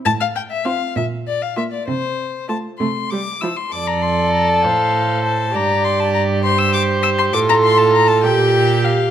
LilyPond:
<<
  \new Staff \with { instrumentName = "Violin" } { \time 6/8 \key f \major \tempo 4. = 66 a''16 f''16 g''16 e''16 f''8 e''8 d''16 f''16 e''16 d''16 | c''4 a''8 c'''8 d'''8 e'''16 c'''16 | d'''16 bes''16 c'''8 bes''16 a''16 f''4 a''8 | bes''8 c'''16 a''16 bes''8 c'''16 e'''16 d'''8 e'''16 c'''16 |
d'''16 bes''16 c'''16 a''16 bes''16 a''16 g''4 f''8 | }
  \new Staff \with { instrumentName = "Violin" } { \time 6/8 \key f \major r4 f'8 r4 f'8 | r4 f'8 r4 e'8 | a'2. | g'2. |
f'4. g'4. | }
  \new Staff \with { instrumentName = "Viola" } { \time 6/8 \key f \major r4 c'8 r4 bes8 | r4 a8 a8 g8 f8 | d''4. c''4. | d''4. c''4. |
a'4. g'4. | }
  \new Staff \with { instrumentName = "Cello" } { \clef bass \time 6/8 \key f \major a,4. bes,4. | c4. c4. | f,4. a,4. | g,2. |
a,4. bes,4. | }
>>